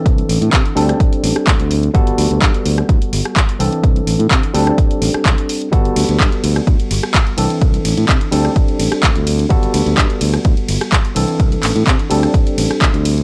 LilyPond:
<<
  \new Staff \with { instrumentName = "Tine electric piano" } { \time 4/4 \key g \major \tempo 4 = 127 <e c' d' a'>4. <g c' d' a'>2~ <g c' d' a'>8 | <g b fis' a'>2.~ <g b fis' a'>8 <e c' d' a'>8~ | <e c' d' a'>4. <g c' d' a'>2~ <g c' d' a'>8 | <g b fis' a'>2.~ <g b fis' a'>8 <e c' d' a'>8~ |
<e c' d' a'>4. <g c' d' a'>2~ <g c' d' a'>8 | <g b fis' a'>2.~ <g b fis' a'>8 <e c' d' a'>8~ | <e c' d' a'>4. <g c' d' a'>2~ <g c' d' a'>8 | }
  \new Staff \with { instrumentName = "Fingered electric bass" } { \clef bass \time 4/4 \key g \major c,16 r16 a,,16 a,16 c16 r16 d,16 r8. a,,16 r16 d,16 d,8 r16 | g,,16 r16 d,16 d,16 g,16 r16 d,16 r16 d,16 r16 g,,16 r8. c,16 r16 | c,16 r16 a,,16 a,16 c16 r16 d,16 r8. a,,16 r16 c,16 r8. | g,,16 r16 d,16 d,16 g,16 r16 d,16 r16 d,16 r16 g,,16 r8. c,16 r16 |
c,16 r16 a,,16 a,16 c16 r16 d,16 r8. a,,16 r16 d,16 d,8 r16 | g,,16 r16 d,16 d,16 g,16 r16 d,16 r16 d,16 r16 g,,16 r8. c,16 r16 | c,16 r16 a,,16 a,16 c16 r16 d,16 r8. a,,16 r16 d,16 d,8 r16 | }
  \new DrumStaff \with { instrumentName = "Drums" } \drummode { \time 4/4 <hh bd>16 hh16 hho16 hh16 <hc hh bd>16 hh16 hho16 <hh ss>16 <hh bd>16 hh16 hho16 <hh ss>16 <hc hh bd>16 hh16 hho16 hh16 | <hh bd>16 hh16 hho16 hh16 <hc hh bd>16 hh16 hho16 <hh ss>16 <hh bd>16 hh16 hho16 ss16 <hc hh bd>16 hh16 hho16 hh16 | <hh bd>16 hh16 hho16 hh16 <hc hh bd>16 hh16 hho16 ss16 <hh bd>16 hh16 hho16 <hh ss>16 <hc hh bd>16 hh16 hho16 hh16 | <hh bd>16 hh16 <hho cymr>16 hh16 <hc hh bd>16 hh16 <hho cymr>16 <hh ss>16 <hh bd>16 hh16 <hho cymr>16 <hh ss>16 <hc hh bd>16 hh16 <hho cymr>16 hh16 |
<hh bd>16 hh16 <hho cymr>16 hh16 <hc hh bd>16 hh16 <hho cymr>16 <hh ss>16 <hh bd>16 hh16 <hho cymr>16 <hh ss>16 <hc hh bd>16 hh16 <hho cymr>16 hh16 | <hh bd>16 hh16 <hho cymr>16 hh16 <hc hh bd>16 hh16 <hho cymr>16 <hh ss>16 <hh bd>16 hh16 <hho cymr>16 <hh ss>16 <hc hh bd>16 hh16 <hho cymr>16 hh16 | <hh bd>16 hh16 <hc hho cymr>16 hh16 <hc hh bd>16 hh16 <hho cymr>16 <hh ss>16 <hh bd>16 hh16 <hho cymr>16 <hh ss>16 <hc hh bd>16 hh16 <hho cymr>16 hh16 | }
>>